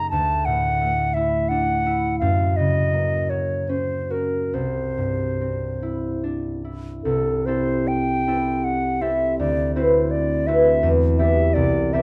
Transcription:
Already playing: F#2 C#3 A#3 D#4 G#4
0.10 D2 A5
0.45 A2 F#5
0.81 A3
1.14 E4 E5
1.49 D4 F#5
1.86 E4
2.19 F#2 F5
2.56 C#3 D#5
2.93 A#3
3.30 F#4 C#5
3.69 C#4 C5
4.10 F#4 A#4
4.54 C2 C5
4.98 G2
5.41 C4
5.83 E4
6.24 D4
6.64 E4
7.04 C2 A4
7.46 C4 E4 G4 A4 C5
7.88 G5
8.27 C4 E4 G4 A4
8.64 F#5
9.01 C4 E4 G4 A4 E5
9.39 D2 D5
9.75 C4 E4 F#4 B4 C5
10.11 D5
10.47 C4 E4 F#4 B4 E5
10.83 E2
11.18 B3 E4 G4 D5 E5
11.54 C2 D5
11.93 B3 E4 G4 D5 E5

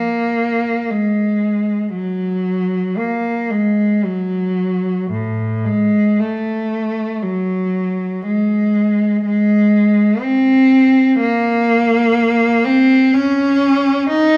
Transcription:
Already playing: A#3
0.90 G#3
1.94 F#3
2.97 A#3
3.51 G#3
4.05 F#3
5.11 A2
5.65 G#3
6.19 A3
7.23 F#3
8.27 G#3
9.25 G#3
10.21 C4
11.21 A#3
12.65 C4
13.13 C#4
14.09 D#4

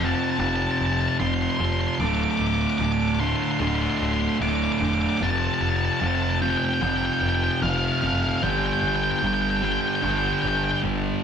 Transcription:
Already playing: F1
0.00 F2 C3 F3
0.07 A5
0.15 A5
0.24 A5
0.30 A5
0.39 F1 F2 C3 F3 A5
0.48 A5
0.56 A5
0.62 A5
0.71 A5
0.78 F1 A5
0.86 A5
0.93 A5
1.00 A5
1.08 A5
1.20 F1 F2 C3 F3 C6
1.27 C6
1.34 C6
1.42 C6
1.51 C6
1.57 F1 F2 C3 F3 C6
1.65 C6
1.73 C6
1.81 C6
1.88 C6
1.95 C6
1.99 D1 D2 A2 D3 D6
2.07 D6
2.15 D6
2.24 D6
2.31 D6
2.38 D1 D6
2.47 D6
2.55 D6
2.62 D6
2.70 D6
2.78 D1 D2 A2 D3 D6
2.85 D6
2.92 D6
3.01 D6
3.08 D6
3.15 D6
3.20 D2 A2 D3 C6
3.28 C6
3.36 C6
3.43 C6
3.51 C6
3.60 D1 D2 A2 D3 C6
3.68 C6
3.75 C6
3.82 C6
3.91 C6
3.97 D1 C6
4.05 C6
4.13 C6
4.21 C6
4.29 C6
4.40 D1 D2 A2 D3 D6
4.49 D6
4.56 D6
4.64 D6
4.72 D6
4.79 E1 D2 A2 D3 D6
4.86 D6
4.94 D6
5.02 D6
5.09 D6
5.18 F1 F2 C3 D6
5.22 F3 A5
5.30 A5
5.38 A5
5.45 A5
5.54 A5
5.61 F1 A5
5.69 A5
5.76 A5
5.85 A5
5.93 A5
6.00 F1 F2 C3 F3 A5
6.07 A5
6.15 A5
6.23 A5
6.31 A5
6.42 F2 C3 F3 G5
6.50 G5
6.58 G5
6.65 G5
6.74 G5
6.81 F1 F2 C3 F3 G5
6.89 G5
6.97 G5
7.05 G5
7.13 G5
7.20 F1 G5
7.29 G5
7.35 G5
7.44 G5
7.52 G5
7.62 F1 F2 C3 F3 F5
7.70 F5
7.78 F5
7.85 F5
7.92 F5
8.01 F#1 F2 C3 F3 F5
8.07 F5
8.15 F5
8.22 F5
8.29 F5
8.37 F5
8.42 G1 G2 D3 G3 G5
8.50 G5
8.58 G5
8.66 G5
8.73 G5
8.81 G1 G5
8.88 G5
8.96 G5
9.04 G5
9.11 G5
9.19 G1 G2 D3 G5
9.23 G3
9.27 G5
9.34 G5
9.42 G5
9.50 G5
9.57 G5
9.62 G2 D3 G3 G5
9.72 G5
9.81 G5
9.88 G5
9.96 G5
10.02 G1 G2 D3 G3 G5
10.11 G5
10.18 G5
10.27 G5
10.33 G5
10.42 G1 G5
10.48 G5
10.57 G5
10.64 G5
10.71 G5
10.83 G1 G2 D3 G3

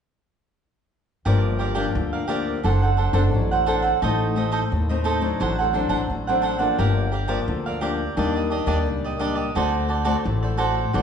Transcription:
1.25 G1 G2 F3 A#3 D4 G4 A#4 D5 F5
1.59 G4 A#4 D5 F5
1.75 F3 A#3 D4 G4 A#4 D5 F5
1.95 D2 D3
2.13 A#4 D5 F5
2.28 F3 A#3 D4 G4 A#4 D5 F5
2.64 F#1 F#3 C4 D4 A4 C5 F#5
2.82 A4 C5 F#5
2.97 D4 A4 C5 F#5
3.13 F#1 C4 D4 A4 C5 F#5
3.33 A1 F#3
3.51 A4 C5 F#5
3.66 C4 D4 A4 C5 F#5
3.82 A4 C5 F#5
4.02 A1 A2 A3 C4 D#4 A4 C5 D#5
4.36 A3 C4 D#4 A4 C5 D#5
4.52 D#4 A4 C5 D#5
4.72 D#2 A2
4.89 A3 C4 D#4 A4 C5 D#5
5.04 D#4 A4 C5 D#5
5.21 F#3 C4 D4
5.40 A1 A2 D4 A4 C5 F#5
5.59 A4 C5 F#5
5.73 F#3 C4 D4 A4 C5 F#5
5.89 A1 D4 A4 C5 F#5
6.10 A1 A2
6.27 F#3 C4 D4 A4 C5 F#5
6.42 D4 A4 C5 F#5
6.59 F3 A#3 D4 A4 C5 F#5
6.78 G1 G2 G4 A#4 D5 F5
7.12 G4 A#4 D5 F5
7.28 F3 A#3 D4 G4 A#4 D5 F5
7.48 D2 D3
7.66 A#4 D5 F5
7.81 F3 A#3 D4 G4 A#4 D5 F5
8.17 D#2 D#3 G3 A#3 D4 G4 D5 D#5
8.35 G4 D5 D#5
8.50 D4 G4 D5 D#5
8.66 D#2 G3 A#3 D4 G4 D5 D#5
8.86 C#2 A#2
9.04 G4 D5 D#5
9.19 G3 A#3 D4 G4 D5 D#5
9.35 G4 D5 D#5
9.55 D2 D3 A3 C4 F#4 A4 C5 D5
9.88 F#4 A4 C5 D5
10.04 A3 C4 F#4 A4 C5 D5
10.25 A1 A2
10.43 A4 C5 D5
10.57 A3 C4 F#4 A4 C5 D5
10.93 A1 D3 A3 C4 F#4 A4 C5 D5

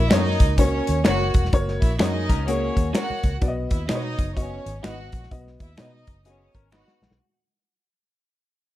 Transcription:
0.10 F#2 A3 C#4 D#4 F#4 A#4 C#5 D#5, finger snap, snare, closed hi-hat
0.17 A#3
0.40 C#2, kick, closed hi-hat
0.58 A#3 C#4 F#4 C#5, kick, closed hi-hat
0.87 D#2, closed hi-hat
1.04 F#1 A#3 C#4 F#4 A#4 C#5 F#5, finger snap, snare, closed hi-hat
1.34 E1, kick, closed hi-hat
1.45 snare
1.53 F#1 A#3 F#4 C#5, kick, closed hi-hat
1.68 snare
1.81 A#1 E4 E5, kick, closed hi-hat
1.99 F#2 A#3 C#4 D#4 F#4 G#4 A#4 C#5 D#5, finger snap, snare, closed hi-hat
2.29 C#2 C#4 A#4, kick, closed hi-hat
2.46 A#3 C#4 F#4 G#4 C#5, closed hi-hat
2.77 D#2, kick, closed hi-hat
2.93 A#3 C#4 F#4 A#4 C#5 F#5, finger snap, snare, closed hi-hat
3.10 muted fingered electric bass stroke
3.23 C#2, kick, closed hi-hat
3.41 B1 B3 F#4 D5, kick, closed hi-hat
3.48 D#5
3.71 D#2 E4 E5, kick, closed hi-hat
3.88 B2 B3 D#4 F#4 B4 D#5, finger snap, snare, closed hi-hat
3.95 C#5
4.19 F#1, kick, closed hi-hat
4.36 B3 C#4 F#4 C#5 D#5, kick, closed hi-hat
4.66 G#1, closed hi-hat
4.83 G#1 B3 D#4 F#4 B4 D#5 F#5, finger snap, snare, closed hi-hat
5.12 A#1, kick, closed hi-hat
5.23 snare
5.31 B1 B3 F#4 D#5, kick, closed hi-hat
5.47 snare
5.60 D#2 E4 E5, kick, closed hi-hat
5.78 B2 B3 D#4 F#4 B4 C#5 D#5, finger snap, snare, closed hi-hat
5.84 D#5
6.07 F#1, kick, closed hi-hat
6.25 B3 C#4 F#4 G#4 C#5 D#5, closed hi-hat
6.55 G#1 C#4 A#4, kick, closed hi-hat
6.72 B3 D#4 F#4 B4 D#5 F#5, finger snap, snare
6.88 snare
7.02 A#1, snare
7.10 B1, snare

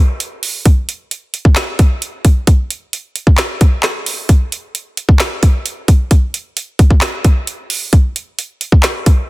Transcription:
0.20 closed hi-hat
0.43 open hi-hat
0.66 kick, closed hi-hat
0.89 closed hi-hat
1.11 closed hi-hat
1.34 closed hi-hat
1.45 kick
1.56 snare, clap, closed hi-hat
1.79 kick, closed hi-hat
2.02 closed hi-hat
2.25 kick, closed hi-hat
2.47 kick, closed hi-hat
2.70 closed hi-hat
2.93 closed hi-hat
3.16 closed hi-hat
3.27 kick
3.38 snare, clap, closed hi-hat
3.61 kick, closed hi-hat
3.83 cross-stick, snare, clap, closed hi-hat
4.06 open hi-hat
4.29 kick, closed hi-hat
4.52 closed hi-hat
4.75 closed hi-hat
4.97 closed hi-hat
5.09 kick
5.20 snare, clap, closed hi-hat
5.43 kick, closed hi-hat
5.66 closed hi-hat
5.88 kick, closed hi-hat
6.11 kick, closed hi-hat
6.34 closed hi-hat
6.57 closed hi-hat
6.79 kick, closed hi-hat
6.90 kick
7.01 snare, clap, closed hi-hat
7.24 kick, closed hi-hat
7.47 closed hi-hat
7.70 open hi-hat
7.93 kick, closed hi-hat
8.16 closed hi-hat
8.39 closed hi-hat
8.61 closed hi-hat
8.72 kick
8.83 snare, clap, closed hi-hat
9.06 kick, closed hi-hat

